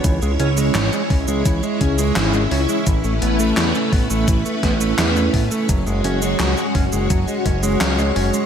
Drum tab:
HH |x-x-x-o-x-x-x-o-|x-x-x-o-x-x-x-o-|x-x-x-o-x-x-x-o-|
SH |xx-xxx-xxx-xxx-x|xx-xxx-xxx-xxx-x|xx-xxx-xxx-xxx-x|
CP |----x-------x---|----x-------x---|----x-------x---|
SD |----o-------o---|----o-----o-o---|----o-------o---|
BD |o-----o-o-o-----|o-----o-o-o---o-|o-----o-o-o-----|